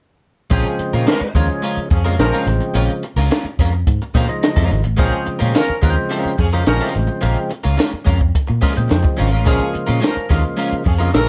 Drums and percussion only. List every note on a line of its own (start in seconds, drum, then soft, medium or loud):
0.51 kick loud
0.51 closed hi-hat medium
0.79 closed hi-hat medium
1.07 snare loud
1.07 closed hi-hat medium
1.35 kick medium
1.35 snare soft
1.35 closed hi-hat medium
1.64 closed hi-hat medium
1.90 kick loud
1.90 open hi-hat medium
2.06 closed hi-hat soft
2.19 snare medium
2.19 closed hi-hat medium
2.47 snare soft
2.47 closed hi-hat medium
2.61 closed hi-hat soft
2.75 closed hi-hat medium
3.03 closed hi-hat medium
3.18 snare soft
3.31 snare loud
3.31 closed hi-hat medium
3.59 kick medium
3.59 closed hi-hat medium
3.87 kick loud
3.87 closed hi-hat medium
4.14 kick loud
4.14 open hi-hat medium
4.29 closed hi-hat medium
4.43 snare loud
4.43 closed hi-hat medium
4.57 kick medium
4.71 snare soft
4.71 closed hi-hat medium
4.85 closed hi-hat soft
4.99 kick loud
4.99 closed hi-hat medium
5.27 closed hi-hat medium
5.55 snare loud
5.55 closed hi-hat medium
5.83 kick medium
5.83 snare soft
5.83 closed hi-hat medium
6.12 closed hi-hat medium
6.38 kick medium
6.38 open hi-hat medium
6.53 closed hi-hat soft
6.67 snare loud
6.67 closed hi-hat medium
6.95 snare soft
6.95 closed hi-hat medium
7.23 closed hi-hat medium
7.51 closed hi-hat medium
7.79 snare loud
7.79 closed hi-hat medium
8.07 kick medium
8.07 closed hi-hat medium
8.21 kick medium
8.35 kick loud
8.35 closed hi-hat medium
8.62 kick loud
8.62 open hi-hat medium
8.77 closed hi-hat medium
8.91 snare loud
8.91 closed hi-hat medium
9.05 kick medium
9.19 snare soft
9.19 closed hi-hat medium
9.47 kick loud
9.47 closed hi-hat medium
9.75 closed hi-hat medium
10.02 snare loud
10.02 closed hi-hat medium
10.02 tambourine medium
10.30 kick medium
10.30 snare soft
10.30 closed hi-hat medium
10.59 closed hi-hat medium
10.86 kick medium
10.86 open hi-hat medium
11.01 closed hi-hat soft
11.14 snare loud
11.14 closed hi-hat medium
11.14 tambourine medium